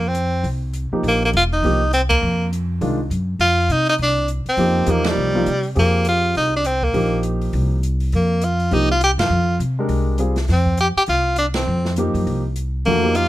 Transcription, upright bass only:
0, 0, Header, 1, 3, 480
1, 0, Start_track
1, 0, Tempo, 295421
1, 1695, Time_signature, 4, 2, 24, 8
1, 21582, End_track
2, 0, Start_track
2, 0, Title_t, "Upright bass"
2, 0, Program_c, 0, 32
2, 0, Note_on_c, 0, 41, 79
2, 677, Note_off_c, 0, 41, 0
2, 705, Note_on_c, 0, 36, 75
2, 1431, Note_off_c, 0, 36, 0
2, 1676, Note_on_c, 0, 34, 78
2, 2131, Note_off_c, 0, 34, 0
2, 2176, Note_on_c, 0, 28, 69
2, 2621, Note_off_c, 0, 28, 0
2, 2642, Note_on_c, 0, 36, 74
2, 3558, Note_off_c, 0, 36, 0
2, 3609, Note_on_c, 0, 41, 75
2, 4522, Note_off_c, 0, 41, 0
2, 4566, Note_on_c, 0, 36, 70
2, 5015, Note_off_c, 0, 36, 0
2, 5040, Note_on_c, 0, 42, 70
2, 5492, Note_off_c, 0, 42, 0
2, 5513, Note_on_c, 0, 41, 77
2, 5967, Note_off_c, 0, 41, 0
2, 6001, Note_on_c, 0, 48, 74
2, 6452, Note_off_c, 0, 48, 0
2, 6478, Note_on_c, 0, 36, 79
2, 7196, Note_off_c, 0, 36, 0
2, 7424, Note_on_c, 0, 41, 76
2, 7882, Note_off_c, 0, 41, 0
2, 7908, Note_on_c, 0, 40, 67
2, 8364, Note_off_c, 0, 40, 0
2, 8404, Note_on_c, 0, 36, 72
2, 8853, Note_off_c, 0, 36, 0
2, 8888, Note_on_c, 0, 48, 69
2, 9335, Note_off_c, 0, 48, 0
2, 9364, Note_on_c, 0, 41, 76
2, 10278, Note_off_c, 0, 41, 0
2, 10333, Note_on_c, 0, 36, 71
2, 11244, Note_off_c, 0, 36, 0
2, 11271, Note_on_c, 0, 34, 76
2, 12192, Note_off_c, 0, 34, 0
2, 12238, Note_on_c, 0, 36, 77
2, 13156, Note_off_c, 0, 36, 0
2, 13209, Note_on_c, 0, 41, 85
2, 14122, Note_off_c, 0, 41, 0
2, 14158, Note_on_c, 0, 36, 75
2, 14877, Note_off_c, 0, 36, 0
2, 14913, Note_on_c, 0, 42, 65
2, 15098, Note_off_c, 0, 42, 0
2, 15108, Note_on_c, 0, 41, 84
2, 15566, Note_off_c, 0, 41, 0
2, 15587, Note_on_c, 0, 48, 74
2, 16045, Note_off_c, 0, 48, 0
2, 16066, Note_on_c, 0, 36, 70
2, 16991, Note_off_c, 0, 36, 0
2, 17035, Note_on_c, 0, 41, 74
2, 17756, Note_off_c, 0, 41, 0
2, 18000, Note_on_c, 0, 36, 75
2, 18918, Note_off_c, 0, 36, 0
2, 18968, Note_on_c, 0, 41, 83
2, 19683, Note_off_c, 0, 41, 0
2, 19725, Note_on_c, 0, 42, 67
2, 19912, Note_off_c, 0, 42, 0
2, 19931, Note_on_c, 0, 36, 71
2, 20844, Note_off_c, 0, 36, 0
2, 20902, Note_on_c, 0, 41, 78
2, 21582, Note_off_c, 0, 41, 0
2, 21582, End_track
3, 0, Start_track
3, 0, Title_t, "Muted upright bass strokes"
3, 1491, Note_on_c, 9, 29, 37
3, 1653, Note_off_c, 9, 29, 0
3, 7240, Note_on_c, 9, 29, 36
3, 7403, Note_off_c, 9, 29, 0
3, 17810, Note_on_c, 9, 29, 35
3, 17973, Note_off_c, 9, 29, 0
3, 21582, End_track
0, 0, End_of_file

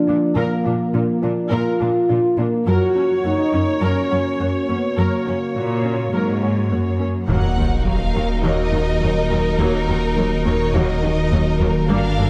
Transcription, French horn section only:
0, 0, Header, 1, 2, 480
1, 0, Start_track
1, 0, Key_signature, -6, "minor"
1, 0, Tempo, 576923
1, 300, Time_signature, 4, 2, 24, 8
1, 10232, End_track
2, 0, Start_track
2, 0, Title_t, "French horn section"
2, 0, Program_c, 0, 60
2, 0, Note_on_c, 0, 62, 78
2, 310, Note_off_c, 0, 62, 0
2, 321, Note_on_c, 0, 58, 74
2, 1016, Note_off_c, 0, 58, 0
2, 1023, Note_on_c, 0, 62, 69
2, 1261, Note_off_c, 0, 62, 0
2, 1268, Note_on_c, 0, 65, 86
2, 1984, Note_off_c, 0, 65, 0
2, 1984, Note_on_c, 0, 58, 66
2, 2222, Note_off_c, 0, 58, 0
2, 2228, Note_on_c, 0, 66, 91
2, 2694, Note_off_c, 0, 66, 0
2, 2710, Note_on_c, 0, 63, 94
2, 3175, Note_off_c, 0, 63, 0
2, 3186, Note_on_c, 0, 61, 72
2, 3903, Note_off_c, 0, 61, 0
2, 3907, Note_on_c, 0, 59, 57
2, 4143, Note_off_c, 0, 59, 0
2, 4144, Note_on_c, 0, 58, 65
2, 5553, Note_off_c, 0, 58, 0
2, 10232, End_track
0, 0, End_of_file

